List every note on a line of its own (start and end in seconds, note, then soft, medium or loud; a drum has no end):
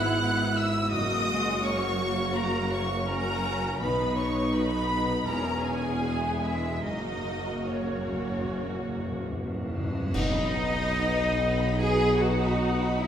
0.00 0.87 G#1 medium
0.00 0.88 G#1 medium
0.00 0.88 G#2 medium
0.00 0.87 B3 medium
0.00 0.92 B3 medium
0.00 0.87 E4 medium
0.00 0.91 E4 medium
0.00 0.56 F#5 loud
0.00 0.55 F#6 loud
0.00 0.59 F#6 medium
0.56 0.91 E5 medium
0.56 0.93 E6 medium
0.56 0.92 E6 loud
0.91 3.77 F#1 medium
0.91 3.64 F#1 medium
0.91 3.77 F#2 medium
0.91 1.96 F#2 medium
0.91 1.27 A#3 medium
0.91 3.77 A#3 medium
0.91 3.04 F#4 medium
0.91 3.77 F#4 medium
0.91 1.63 D#5 loud
0.91 1.64 D#6 loud
0.91 1.63 D#6 loud
1.27 1.64 G#3 medium
1.63 1.98 A#3 medium
1.63 2.35 C#5 medium
1.63 2.36 C#6 loud
1.63 2.37 C#6 medium
2.00 3.06 A#3 medium
2.35 2.71 A#4 medium
2.35 2.72 A#5 loud
2.35 2.72 A#5 medium
2.71 3.08 C#5 medium
2.71 3.08 C#6 medium
2.71 3.09 C#6 medium
3.07 3.81 C#4 medium
3.07 3.80 F#4 medium
3.07 3.81 A#4 medium
3.07 3.56 A#5 medium
3.07 3.81 A#5 loud
3.79 5.24 B1 medium
3.79 5.24 B2 medium
3.79 4.87 B2 medium
3.79 6.65 B3 medium
3.79 4.52 B3 medium
3.79 5.24 D#4 medium
3.79 4.17 B4 medium
3.79 4.17 B5 medium
4.16 4.54 C#5 medium
4.16 4.55 C#6 medium
4.16 4.54 C#6 medium
4.53 5.26 B3 medium
4.53 5.25 B4 medium
4.53 5.29 B5 medium
4.53 5.28 B5 loud
5.26 6.80 E1 medium
5.26 6.85 E1 medium
5.26 6.80 E2 medium
5.26 6.03 C#4 medium
5.26 6.65 E4 medium
5.26 6.84 G#4 medium
5.26 5.64 A#4 medium
5.26 5.65 A#5 loud
5.26 5.64 A#5 medium
5.64 6.41 G#4 medium
5.64 6.42 G#5 medium
5.64 6.44 G#5 medium
6.03 6.43 B3 medium
6.42 6.83 G#3 medium
6.42 6.84 E4 medium
6.42 6.85 E5 medium
6.42 6.84 E5 medium
6.82 9.93 F#1 medium
6.82 6.91 F#2 soft
6.82 9.93 F#2 medium
6.82 9.76 A#3 medium
6.82 9.89 A#3 medium
6.82 7.68 D#4 medium
6.82 9.76 F#4 medium
6.82 9.93 F#4 medium
6.82 7.68 D#5 medium
6.82 7.66 D#5 medium
6.92 6.99 F#2 soft
7.00 7.06 F#2 soft
7.07 7.14 F#2 soft
7.15 7.21 F#2 soft
7.22 7.29 F#2 soft
7.30 7.37 F#2 soft
7.38 7.45 F#2 soft
7.46 7.51 F#2 soft
7.52 7.58 F#2 soft
7.59 7.67 F#2 soft
7.67 7.74 F#2 soft
7.67 9.31 C#4 medium
7.67 9.31 C#5 medium
7.67 9.29 C#5 medium
7.75 7.82 F#2 soft
7.83 7.89 F#2 medium
7.90 7.97 F#2 soft
7.98 8.05 F#2 soft
8.06 8.12 F#2 medium
8.13 8.20 F#2 medium
8.21 8.27 F#2 soft
8.28 8.35 F#2 medium
8.36 8.43 F#2 medium
8.44 8.50 F#2 medium
8.51 8.57 F#2 medium
8.58 8.65 F#2 medium
8.66 8.73 F#2 medium
8.74 8.80 F#2 medium
8.81 8.87 F#2 medium
8.88 8.95 F#2 medium
8.97 9.02 F#2 medium
9.03 9.10 F#2 medium
9.11 9.16 F#2 medium
9.17 9.24 F#2 medium
9.26 9.31 F#2 medium
9.32 9.38 F#2 medium
9.39 9.45 F#2 medium
9.46 9.53 F#2 medium
9.54 9.60 F#2 medium
9.61 9.68 F#2 medium
9.69 9.76 F#2 medium
9.77 9.83 F#2 loud
9.84 9.91 F#2 loud
9.93 9.99 F#2 loud
10.00 10.07 F#2 loud
10.12 13.07 B1 medium
10.12 13.07 B3 medium
10.12 11.75 D#4 loud
10.12 13.07 F#4 medium
10.12 10.33 B4 medium
10.12 11.75 D#5 loud
10.12 11.81 D#5 loud
10.12 10.33 F#5 medium
10.12 concert bass drum medium
10.12 crash medium
10.34 10.55 D#5 medium
10.34 10.55 B5 medium
10.55 10.76 B4 medium
10.55 10.76 F#5 medium
10.75 10.97 D#5 medium
10.75 10.97 B5 medium
10.97 11.17 B4 medium
10.97 11.17 F#5 medium
11.17 11.38 D#5 medium
11.17 11.38 B5 medium
11.38 11.59 B4 medium
11.38 11.59 F#5 medium
11.59 11.79 D#5 medium
11.59 11.79 B5 medium
11.78 13.07 D#4 medium
11.78 12.19 G#4 loud
11.78 11.98 B4 medium
11.78 11.98 F#5 medium
11.78 12.19 G#5 medium
11.78 12.20 G#5 medium
12.00 12.20 D#5 medium
12.00 12.20 B5 medium
12.19 12.99 F#4 medium
12.19 12.40 B4 medium
12.19 13.00 F#5 medium
12.19 12.40 F#5 medium
12.19 13.03 F#5 medium
12.40 12.60 D#5 medium
12.40 12.60 B5 medium
12.60 12.78 B4 medium
12.60 12.79 F#5 medium
12.80 13.00 D#5 medium
12.80 13.00 B5 medium
12.99 13.07 E4 medium
12.99 13.07 B4 medium
12.99 13.07 E5 medium
12.99 13.07 F#5 medium